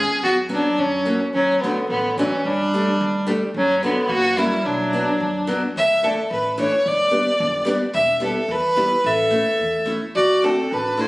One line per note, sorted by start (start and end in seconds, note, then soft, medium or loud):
0.00 0.19 C#4 medium
0.00 0.20 G#4 loud
0.22 0.58 F#2 medium
0.22 0.35 B3 medium
0.22 0.36 F#4 loud
0.49 0.62 F#3 medium
0.49 0.78 F#3 medium
0.49 0.62 B3 medium
0.49 0.62 C#4 medium
0.49 0.81 D4 medium
0.78 1.14 F#2 medium
0.78 1.20 F#3 medium
0.78 1.21 C#4 medium
1.05 1.18 F#3 medium
1.05 1.18 A#3 soft
1.05 1.19 C#4 medium
1.33 1.71 D2 medium
1.33 1.64 F#3 medium
1.33 1.62 C#4 medium
1.60 1.88 D3 medium
1.60 1.75 F#3 medium
1.60 1.75 A3 soft
1.60 1.88 B3 medium
1.60 1.76 D4 medium
1.89 2.26 A1 medium
1.89 2.16 D3 medium
1.89 2.16 B3 medium
2.18 2.46 E3 medium
2.18 2.30 F#3 medium
2.18 2.31 A3 medium
2.18 2.48 C#4 medium
2.18 2.31 D4 medium
2.45 2.81 G1 medium
2.45 3.28 G3 medium
2.45 3.29 D4 medium
2.74 2.86 G3 medium
2.74 2.86 A3 medium
2.74 2.86 D4 medium
3.01 3.36 D2 loud
3.27 3.40 G3 medium
3.27 3.40 A3 medium
3.27 3.40 D4 medium
3.54 3.90 F#1 medium
3.54 3.81 F#3 medium
3.54 3.82 C#4 medium
3.83 4.09 D3 medium
3.83 3.95 F#3 medium
3.83 3.95 B3 medium
3.83 4.12 B3 medium
3.83 3.96 D4 medium
4.08 4.45 F#1 loud
4.08 4.39 A#3 medium
4.08 4.40 F#4 loud
4.37 4.50 F#3 medium
4.37 4.65 G3 medium
4.37 4.50 A#3 medium
4.37 4.50 C#4 medium
4.37 4.67 E4 medium
4.63 5.01 B1 medium
4.63 5.48 F#3 medium
4.63 5.49 D4 medium
4.93 5.06 F#3 medium
4.93 5.05 B3 soft
4.93 5.06 D4 medium
5.20 5.56 F#2 medium
5.47 5.61 F#3 medium
5.47 5.61 B3 medium
5.47 5.61 D4 medium
5.76 6.12 D2 medium
5.76 6.05 E5 loud
6.03 6.16 E3 medium
6.03 6.16 A3 soft
6.03 6.16 D4 medium
6.03 6.31 A4 medium
6.31 6.66 A1 medium
6.31 6.57 B4 medium
6.58 6.71 E3 medium
6.58 6.71 A3 soft
6.58 6.71 D4 medium
6.58 6.89 C#5 medium
6.86 7.21 G1 medium
6.86 7.69 D5 medium
7.11 7.24 G3 medium
7.11 7.24 B3 medium
7.11 7.25 D4 medium
7.40 7.76 F#1 loud
7.65 7.79 G3 medium
7.65 7.79 B3 medium
7.65 7.80 D4 medium
7.93 8.30 E1 loud
7.93 8.20 E5 loud
8.20 8.33 G3 medium
8.20 8.34 B3 medium
8.20 8.34 E4 medium
8.25 8.52 A4 medium
8.48 8.84 E2 loud
8.48 9.08 B4 loud
8.76 8.89 G3 medium
8.76 8.89 B3 medium
8.76 8.89 E4 medium
9.04 9.40 A1 loud
9.04 9.89 A4 medium
9.04 9.89 E5 medium
9.31 9.44 A3 medium
9.31 9.44 C#4 medium
9.31 9.45 E4 medium
9.60 9.96 E2 medium
9.86 9.99 A3 medium
9.86 10.00 C#4 medium
9.86 10.00 E4 medium
10.15 10.52 D2 medium
10.15 10.47 F#4 medium
10.15 10.45 D5 loud
10.42 10.55 A3 medium
10.42 10.73 C4 medium
10.42 10.56 D4 medium
10.42 10.56 F#4 medium
10.42 10.75 A4 medium
10.72 11.07 A1 medium
10.72 11.02 D4 medium
10.72 11.02 B4 medium
10.97 11.08 A3 medium
10.97 11.08 D4 medium
10.97 11.08 E4 medium
10.97 11.08 F#4 medium
10.97 11.08 C5 medium